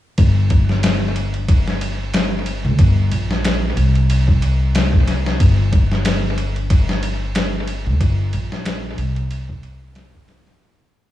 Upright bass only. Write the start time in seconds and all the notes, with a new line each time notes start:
0.18 G1
2.65 D2
2.79 G1
3.11 A#1
3.77 C2
5.40 G1
7.86 D2
8.01 G1
8.34 A#1
8.98 C2